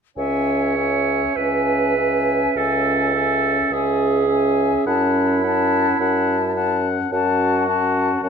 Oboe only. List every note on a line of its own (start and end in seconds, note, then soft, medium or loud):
0.19 0.76 E5 soft
0.77 1.35 E5 soft
1.35 1.95 E5 soft
1.97 2.56 E5 soft
2.57 3.14 E5 soft
3.16 3.71 E5 soft
3.72 4.28 E5 soft
4.28 4.85 E5 soft
4.87 5.43 F#5 soft
5.44 5.99 F#5 soft
6.01 6.39 F#5 soft
6.56 7.11 F#5 soft
7.12 7.67 F#5 medium
7.69 8.22 F#5 soft
8.23 8.29 F#5 medium